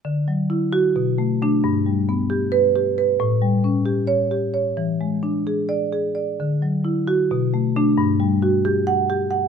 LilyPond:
<<
  \new Staff \with { instrumentName = "Marimba" } { \time 7/8 \key d \major \tempo 4 = 133 r4. fis'8 r4 d'8 | r2 b'4 r8 | r2 cis''4 r8 | r2 d''4 r8 |
r4. fis'8 r4 d'8 | r2 fis''4 r8 | }
  \new Staff \with { instrumentName = "Marimba" } { \time 7/8 \key d \major d8 fis8 e'4 b,8 a8 a8 | g,8 g8 b8 g'4 g'8 b'8 | a,8 g8 cis'8 g'4 g'8 cis''8 | e8 gis8 d'8 gis'4 gis'8 d''8 |
d8 fis8 e'4 b,8 a8 a8 | g,8 g8 fis'8 g'4 g'8 fis''8 | }
>>